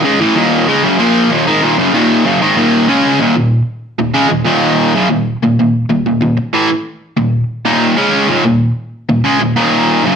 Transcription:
\new Staff \with { instrumentName = "Overdriven electric guitar" } { \clef bass \time 4/4 \key ees \minor \tempo 4 = 94 <des aes>16 <a, fes>16 <ees, bes, ees>8 <des aes>16 <ges, des>16 <bes, f bes>8 <ees, bes,>16 <aes, ees>16 <ees, bes,>16 <ges, des>16 <ees, bes, ees>8 <ges, des>16 <aes, ees>16 | <ees, bes, ees>8 <des aes des'>8 <ees, bes,>16 <ees, bes,>8 r8 <ees, bes,>16 <des aes>16 <ees, bes,>16 <ees, bes, ees>8. <ges, des>16 | <ees, bes,>8 <ees, bes,>16 <ees, bes,>8 <ees, bes,>16 <ees, bes,>16 <ees, bes,>16 r16 <a, fes>16 r8. <ees, bes,>8 r16 | <ees, bes, ees>8 <des aes des'>8 <ees, bes,>16 <ees, bes,>8 r8 <ees, bes,>16 <des aes>16 <ees, bes,>16 <ees, bes, ees>8. <ges, des>16 | }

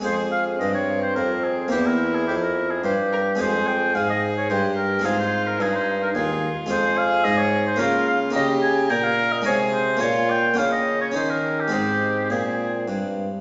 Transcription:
<<
  \new Staff \with { instrumentName = "Oboe" } { \time 3/4 \key f \minor \tempo 4 = 108 c''8 f''8 ees''16 des''8 c''16 bes'8 aes'8 | g'16 bes'8 aes'16 g'16 bes'8 aes'16 g'4 | c''8 g''8 f''16 ees''8 des''16 c''8 bes'8 | aes'16 c''8 bes'16 aes'16 c''8 bes'16 aes'8. r16 |
\key aes \major c''8 f''8 ees''16 des''8 c''16 bes'8 f''8 | ees''8 aes''8 g''16 f''8 ees''16 des''8 c''8 | des''8 g''8 f''16 ees''8 des''16 c''16 bes'8 g'16 | g'4 aes'4 r4 | }
  \new Staff \with { instrumentName = "Violin" } { \time 3/4 \key f \minor aes'4 c'2 | e'2 c''8 bes'8 | aes'4 aes'4 g'4 | f'4 ees'4 f'4 |
\key aes \major aes'2 f'4 | g'4 bes'4 aes'4 | f'4 des'2 | c'2~ c'8 r8 | }
  \new Staff \with { instrumentName = "Harpsichord" } { \time 3/4 \key f \minor <aes c' aes'>2. | <bes c' g'>2. | <aes c' f'>2. | <aes c' f'>2. |
\key aes \major <aes c' f'>2 <bes des' f'>4 | <bes ees' g'>2 <aes ees' aes'>4 | <bes des' f'>4 <bes des' f'>4 <des' ees'>4 | <aes c' ees'>2. | }
  \new Staff \with { instrumentName = "Harpsichord" } { \clef bass \time 3/4 \key f \minor f,4 g,4 f,4 | e,4 f,4 g,4 | f,4 aes,4 g,4 | aes,4 g,4 ees,8 r8 |
\key aes \major f,4 aes,4 des4 | des4 bes,4 c4 | bes,4 des4 ees4 | aes,4 bes,4 g,4 | }
  \new Staff \with { instrumentName = "Bassoon" } { \clef bass \time 3/4 \key f \minor f,4 g,4 f,4 | e,4 f,4 g,4 | f,4 aes,4 g,4 | aes,4 g,4 ees,8 r8 |
\key aes \major f,4 aes,4 des4 | des4 bes,4 c4 | bes,4 des4 ees4 | aes,4 bes,4 g,4 | }
>>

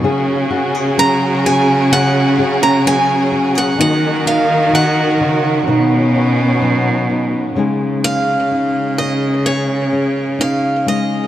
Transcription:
<<
  \new Staff \with { instrumentName = "Steel-string acoustic guitar" } { \time 4/4 \key cis \mixolydian \tempo 4 = 64 r4 ais''8 gis''8 fis''8. ais''16 gis''8. fis''16 | fis''8 eis''8 fis''2~ fis''8 r8 | r8 eis''4 dis''8 cis''4 eis''8 dis''8 | }
  \new Staff \with { instrumentName = "String section" } { \time 4/4 \key cis \mixolydian << { <cis' fis' gis'>1 | <dis' fis' ais'>2 <b cis'>2 | r1 | } \\ { cis1 | dis1 | r1 | } >> }
  \new Staff \with { instrumentName = "Felt piano" } { \time 4/4 \key cis \mixolydian ais8 r4. cis'2~ | cis'8 r4. dis'2~ | dis'8 r2. r8 | }
  \new Staff \with { instrumentName = "Nylon-string guitar" } { \time 4/4 \key cis \mixolydian << { <cis' gis'>8 fis'16 gis'16 cis'8 gis'4 gis'4 fis'16 gis'16 | <ais dis' fis'>8 dis'4. <cis' dis' fis'>8 dis'8 cis'8 dis'8 | <gis cis' dis' gis'>8 cis'8 dis'8 cis'8 gis'8 cis'8 dis'4 | } \\ { cis4 fis4 cis4 fis4 | dis4 dis8 cis8 b,4 fis4 | cis2.~ cis8 gis8 | } >> }
  \new Staff \with { instrumentName = "Cello" } { \clef bass \time 4/4 \key cis \mixolydian cis1 | dis2 b,2 | cis1 | }
>>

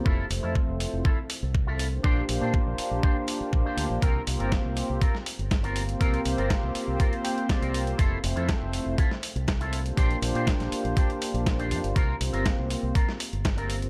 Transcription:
<<
  \new Staff \with { instrumentName = "Analog synth pad" } { \time 4/4 \key c \mixolydian \tempo 4 = 121 r8 <f a c' c'' e''>4 <a c' e' f' c''>8 r4 r16 <a c' e' f' c''>16 r16 <bes d' f' g' c''>16~ | <bes d' f' g' c''>8 <bes d' f' g' c''>4 <bes d' f' g' c''>4 <bes d' f' g' f''>16 <bes d' f' g' c''>4~ <bes d' f' g' c''>16 | r8 <bes c' f' g' c''>4 <bes c' f' g' c''>8 r4 r16 <bes c' f' g' c''>16 r16 <bes c' f' g' c''>16~ | <bes c' f' g' c''>8 <bes c' f' g' c''>4 <bes c' f' g' c''>2~ <bes c' f' g' c''>8 |
r8 <f a c' c'' e''>4 <a c' e' f' c''>8 r4 r16 <a c' e' f' c''>16 r16 <bes d' f' g' c''>16~ | <bes d' f' g' c''>8 <bes d' f' g' c''>4 <bes d' f' g' c''>4 <bes d' f' g' f''>16 <bes d' f' g' c''>4~ <bes d' f' g' c''>16 | r8 <bes c' f' g' c''>4 <bes c' f' g' c''>8 r4 r16 <bes c' f' g' c''>16 r16 <bes c' f' g' c''>16 | }
  \new Staff \with { instrumentName = "Clean electric guitar" } { \time 4/4 \key c \mixolydian << { r1 | r1 | r1 | r2 r8 g''8 d''4 |
r1 | r1 | r1 | } \\ { <e' f' a'>8 r16 <e' f' a'>16 r4 <e' f' a'>16 r4 <e' f' a'>16 r8 | <d' g' c''>8 r16 <d' g' c''>16 r4 <d' g' c''>16 r4 <d' g' c''>16 r8 | <c' f' bes'>8 r16 <c' f' bes'>16 r4 <c' f' bes'>16 r4 <c' f' bes'>16 r8 | <c' f' bes'>8 r16 <c' f' bes'>16 r4 <c' f' bes'>16 r4 <c' f' bes'>16 r8 |
<e' f' a'>8 r16 <e' f' a'>16 r4 <e' f' a'>16 r4 <e' f' a'>16 r8 | <d' g' c''>8 r16 <d' g' c''>16 r4 <d' g' c''>16 r4 <d' g' c''>16 r8 | <c' f' bes'>8 r16 <c' f' bes'>16 r4 <c' f' bes'>16 r4 <c' f' bes'>16 r8 | } >> }
  \new Staff \with { instrumentName = "Fingered electric bass" } { \clef bass \time 4/4 \key c \mixolydian f,,16 r16 f,,16 f,16 r16 f,,16 r16 f,,16 r8. c,4 r16 | bes,,16 r16 bes,,16 bes,16 r16 bes,,16 r16 bes,,16 r4 bes,,16 r16 d,16 bes,,16 | c,16 r16 c,16 g,,16 r16 c,16 r16 c,16 r8. g,,4 r16 | c,16 r16 c,16 g,,16 r16 c,16 r16 c,16 r4 r16 c,8 r16 |
f,,16 r16 f,,16 f,16 r16 f,,16 r16 f,,16 r8. c,4 r16 | bes,,16 r16 bes,,16 bes,16 r16 bes,,16 r16 bes,,16 r8. bes,,8. f,16 g,,16 | c,16 r16 c,16 g,,16 r16 c,16 r16 c,16 r8. g,,4 r16 | }
  \new DrumStaff \with { instrumentName = "Drums" } \drummode { \time 4/4 bd8 hho8 bd8 hho8 bd8 hho8 bd8 hho8 | bd8 hho8 bd8 hho8 bd8 hho8 bd8 hho8 | <hh bd>8 hho16 hh16 <hh bd sn>8 hho8 <hh bd>16 sn16 hho16 hh16 <hh bd sn>16 hh16 hho16 hh16 | <hh bd>16 hh16 hho16 hh16 <hh bd sn>8 hho8 <hh bd>16 hh16 hho16 hh16 <hh bd sn>16 hh16 hho16 hh16 |
<hh bd>8 hho16 hh16 <hh bd sn>8 hho8 <hh bd>16 sn16 hho16 hh16 <hh bd sn>16 hh16 hho16 hh16 | <hh bd>16 hh16 hho16 hh16 <hh bd sn>16 <hh sn>16 hho16 hh16 <hh bd>16 hh16 hho16 hh16 <hh bd sn>16 hh16 hho16 hh16 | <hh bd>8 hho16 hh16 <hh bd sn>8 hho8 <hh bd>16 sn16 hho16 hh16 <hh bd sn>16 hh16 hho16 hh16 | }
>>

